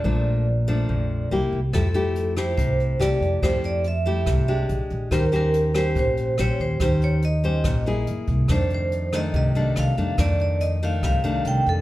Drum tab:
HH |--------|xxxxxxxx|xxxxxxxx|xxxxxxxx|
SD |--------|r--r--r-|r---r---|r--r--r-|
BD |--------|o---o---|o---o---|o---o---|

HH |xxxxxxxx|xxxxxxxx|xxxxxxxx|
SD |r---r---|r--r--r-|r---r---|
BD |o---o--o|o---o---|o---o---|